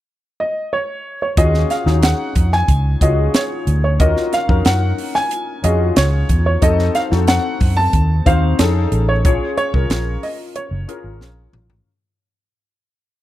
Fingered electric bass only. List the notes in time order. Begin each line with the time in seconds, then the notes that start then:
1.37 D#2
1.86 D#2
2.36 F2
2.68 C#2
3.01 C#2
3.67 D2
4.00 D#2
4.49 F2
4.65 F#2
5.64 F2
5.97 C#2
6.29 E2
6.62 F2
7.12 F2
7.61 F#2
7.93 D#2
8.26 D#2
8.59 F2
8.92 A1
9.25 A#1
9.74 C2
9.90 A#1
10.71 F#1
11.04 G#1
11.20 A#1
11.53 A1